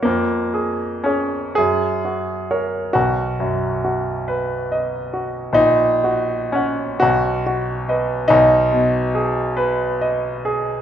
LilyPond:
\new Staff \with { instrumentName = "Grand piano" } { \time 6/8 \key b \lydian \tempo 4. = 45 << { eis,8 gis'8 <gis' cis''>8 fis,8 fis'8 <ais' cis''>8 | b,,8 fis,8 fis'8 b'8 dis''8 fis'8 | ais,,8 fis'8 <cis'' fis''>8 b,,8 fis'8 <b' dis''>8 | \key aes \dorian ces,8 ces8 aes'8 ces''8 ees''8 aes'8 | } \\ { ais4 cis'8 gis'4. | fis'2. | dis'4 cis'8 fis'4. | ees'2. | } >> }